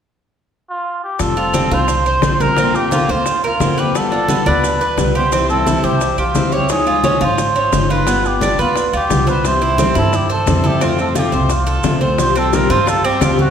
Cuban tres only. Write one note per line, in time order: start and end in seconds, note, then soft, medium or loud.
1.37 1.54 F4 medium
1.54 1.71 C4 medium
1.72 2.05 F4 medium
2.06 2.39 C5 medium
2.40 2.57 A#4 medium
2.58 2.91 C4 medium
2.92 3.08 F4 medium
3.09 3.42 C5 medium
3.44 3.77 A#4 medium
3.78 4.11 B4 medium
4.12 4.29 D4 medium
4.29 4.46 B3 medium
4.46 4.80 D4 medium
4.81 5.14 B4 medium
5.15 5.32 G4 medium
5.32 5.66 C4 medium
5.67 5.83 E4 medium
5.84 6.17 C5 medium
6.18 6.51 G4 medium
6.52 6.86 C#5 medium
6.87 7.03 F4 medium
7.04 7.21 C#4 medium
7.21 7.54 F4 medium
7.56 7.89 C#4 medium
7.90 8.07 F4 medium
8.07 8.40 B3 medium
8.42 8.59 D4 medium
8.59 8.92 B4 medium
8.93 9.26 F4 medium
9.27 9.60 C5 medium
9.62 9.78 E4 medium
9.79 9.95 C4 medium
9.95 10.29 E4 medium
10.30 10.63 C5 medium
10.64 10.81 A4 medium
10.81 11.15 C4 medium
11.15 11.32 F4 medium
11.32 11.66 C5 medium
11.67 12.00 A4 medium
12.01 12.18 C5 medium
12.35 12.69 C4 medium
12.70 13.03 F4 medium
13.04 13.21 C4 medium
13.22 13.50 G4 medium